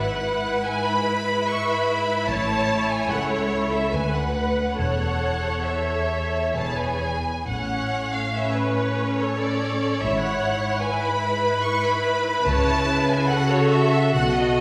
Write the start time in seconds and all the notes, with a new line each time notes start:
Already playing: G#1 G#2 E4 B4
0.02 F#5
0.65 E4 B4 G#5
0.87 B5
1.49 E5 C#6
1.69 B5
2.28 A1 A2 C#5 A5
2.91 G#5
3.10 C#2 A4 F#5
3.31 C#5
3.73 E5
3.93 D2 B4 G#5
4.15 F#5
4.78 E1 E2 A4 C#5 F#5
5.66 E5
6.56 E1 E2 G#4 B4 A5
6.79 G#5
7.47 A1 A2 C#4 C#5 F#5
8.15 F5
8.35 C#4 B4 C#5 E5
8.55 B4
9.19 A4 C#5
9.40 D5
10.01 G#1 E4 C#5 E5
10.05 G#2
10.21 F#5
10.81 E4 B4 G#5
10.85 B4
11.02 B5
11.63 E4 B4 C#6
11.82 B5
12.45 C#2 C#3 E4 C#5 A5
12.90 B4
13.09 G#5
13.29 A4 F#5
13.33 F#4 A4
13.51 C#5
13.71 E5
14.15 B1 B2 F#4 A4 F#5
14.39 D#5